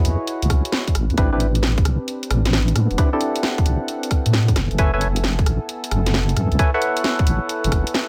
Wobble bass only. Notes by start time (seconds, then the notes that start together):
0.05 E2
0.42 C#2
0.50 C#2
0.95 A1
1.10 E2
1.18 A1
1.85 C2
2.30 A1
2.75 A2
2.91 E1
3.66 C2
4.26 A2
4.56 F#1
4.71 F#1
4.79 F#1
5.46 A1
5.91 F#1
6.36 F#2
6.52 C#2
7.27 A1
7.64 F#1
7.72 F#1